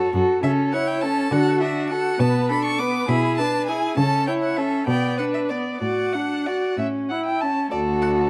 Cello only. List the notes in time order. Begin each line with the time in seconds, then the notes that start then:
0.14 F#2
0.43 C#3
1.31 D3
2.20 B2
3.09 B2
3.97 C#3
4.87 B2
5.81 A2
6.77 A2
7.72 D2